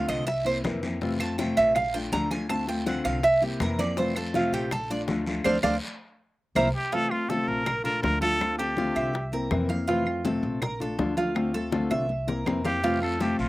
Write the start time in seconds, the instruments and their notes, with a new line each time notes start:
Already playing: nylon-string guitar D3 A3 C4 F4
0.09 upright bass C2, cuban tres D#5, high conga, short guiro, claves
0.27 cuban tres E5, muted nylon-string guitar stroke, high bongo, high conga, long guiro
0.45 nylon-string guitar A#3 C4 E4, cuban tres C5, high bongo, high conga
0.64 upright bass F2, nylon-string guitar C3 E3 A#3 C4 E4, high bongo, low bongo, high conga, short guiro, claves
0.83 nylon-string guitar A#3 C4 E4, high bongo, high conga, short guiro
1.01 nylon-string guitar C3 E3 A3 C4 F4, high bongo, high conga, long guiro
1.20 nylon-string guitar A3 C4 F4, cuban tres A5, high conga, claves
1.38 nylon-string guitar C3 A3 C4 F4, cuban tres G5, high bongo, high conga, short guiro
1.57 upright bass A#1, cuban tres E5, high conga, short guiro
1.75 cuban tres F5, muted nylon-string guitar stroke, high bongo, high conga, low conga, long guiro, claves
1.94 nylon-string guitar A3 D4 F4, cuban tres G5, high conga
2.12 upright bass D2, nylon-string guitar D3 A3 D4 F4, cuban tres A#5, high bongo, low bongo, high conga, short guiro
2.31 nylon-string guitar A3 D4 F4, cuban tres G#5, high conga, short guiro
2.49 nylon-string guitar D3 A3 C4 F4, cuban tres A5, high bongo, high conga, long guiro, claves
2.68 nylon-string guitar A3 C4 F4, cuban tres G5, high bongo, high conga
2.86 nylon-string guitar D3 A3 C4 F4, cuban tres F#5, high bongo, high conga, short guiro
3.04 upright bass C2, cuban tres F5, high conga, short guiro, claves
3.23 cuban tres E5, muted nylon-string guitar stroke, high bongo, high conga, long guiro
3.41 nylon-string guitar A#3 C4 E4, cuban tres G4, high bongo, high conga
3.60 upright bass F2, nylon-string guitar C3 E3 A#3 C4 E4, cuban tres A#4, high bongo, low bongo, high conga, short guiro, claves
3.79 nylon-string guitar A#3 C4 E4, cuban tres D5, high bongo, high conga, short guiro
3.97 nylon-string guitar C3 E3 A3 C4 F4, cuban tres C5, high bongo, high conga, long guiro
4.16 nylon-string guitar A3 C4 F4, cuban tres A4, high conga, claves
4.34 nylon-string guitar C3 A3 C4 F4, cuban tres F4, high bongo, high conga, short guiro
4.53 upright bass A#1, cuban tres G4, high conga, short guiro
4.71 cuban tres A4, muted nylon-string guitar stroke, high bongo, high conga, low conga, long guiro, claves
4.90 nylon-string guitar A3 D4 F4, cuban tres D5, high conga
5.08 upright bass D2, nylon-string guitar D3 A3 D4 F4, high bongo, low bongo, high conga, short guiro
5.26 nylon-string guitar A3 D4 F4, high conga, short guiro
5.44 upright bass D2, nylon-string guitar A3 C4 D4, cuban tres C5 D5 F5, low bongo, high conga, long guiro, claves
5.63 upright bass D2, nylon-string guitar A3 C4 D4, cuban tres C5 D5 F5, low bongo, high conga, long guiro, claves
6.55 upright bass C2, nylon-string guitar A#3 C4 E4, cuban tres A#4 C5 E5, low bongo, high conga, long guiro, claves
6.76 muted trumpet G4
6.92 nylon-string guitar C3 E3 A3 C4 F4, cuban tres F4, muted trumpet A4, high bongo, high conga
7.11 nylon-string guitar A3 C4 F4, muted trumpet F4, high conga, claves
7.28 nylon-string guitar C3 A3 C4 F4, muted trumpet A4, cuban tres A4, high bongo, high conga
7.48 upright bass A#1, muted trumpet A#4, high conga
7.66 cuban tres A#4, muted nylon-string guitar stroke, high bongo, high conga, low conga, claves
7.84 nylon-string guitar A3 D4 F4, cuban tres A4, muted trumpet A#4, high conga, low conga
8.02 upright bass D2, nylon-string guitar D3 A3 D4 F4, muted trumpet A#4, high bongo, low bongo, high conga
8.21 nylon-string guitar A3 D4 F4, cuban tres F4, muted trumpet A4, high conga
8.39 nylon-string guitar D3 A3 C4 F4, high bongo, claves
8.58 nylon-string guitar A3 C4 F4, muted trumpet G4, cuban tres A4, high bongo, high conga
8.76 nylon-string guitar D3 A3 C4 F4, high bongo, high conga
8.95 upright bass C2, cuban tres E5, high conga, claves
9.13 muted nylon-string guitar stroke, high bongo, high conga
9.32 nylon-string guitar A#3 C4 E4, cuban tres A#4, high bongo, high conga
9.51 upright bass F2, nylon-string guitar C3 E3 A#3 C4 E4, high bongo, low bongo, high conga, claves
9.69 nylon-string guitar A#3 C4 E4, cuban tres F5, high bongo, high conga
9.88 nylon-string guitar C3 E3 A3 C4 F4, cuban tres F4, high bongo
10.06 nylon-string guitar A3 C4 F4, high conga, claves
10.25 nylon-string guitar C3 A3 C4 F4, cuban tres A4, high bongo, high conga
10.43 upright bass A#1, high conga
10.62 cuban tres A#4, muted nylon-string guitar stroke, high bongo, high conga, low conga, claves
10.80 nylon-string guitar A3 D4 F4, cuban tres A4, high conga, low conga
10.98 upright bass D2, nylon-string guitar D3 A3 D4 F4, high bongo, low bongo, high conga
11.17 nylon-string guitar A3 D4 F4, cuban tres F4, high conga
11.35 nylon-string guitar D3 A3 C4 F4, high bongo, high conga, claves
11.53 nylon-string guitar A3 C4 F4, cuban tres A4, high bongo, high conga
11.71 nylon-string guitar D3 A3 C4 F4, high bongo, high conga
11.91 upright bass C2, cuban tres E5, high bongo, high conga, claves
12.08 muted nylon-string guitar stroke, high conga
12.27 nylon-string guitar A#3 C4 E4, cuban tres A#4, low bongo, high conga
12.45 upright bass F2, nylon-string guitar C3 E3 A#3 C4 E4, low bongo, high conga, claves
12.64 nylon-string guitar A#3 C4 E4, muted trumpet G4, cuban tres F5, low bongo, high conga
12.83 nylon-string guitar C3 E3 A3 C4 F4, cuban tres F4, high bongo, high conga, long guiro
13.01 nylon-string guitar A3 C4 F4, muted trumpet A4, high conga, claves
13.19 nylon-string guitar C3 A3 C4 F4, muted trumpet G4, cuban tres A4, high bongo, high conga, short guiro
13.39 upright bass A#1, muted trumpet F4, high conga, short guiro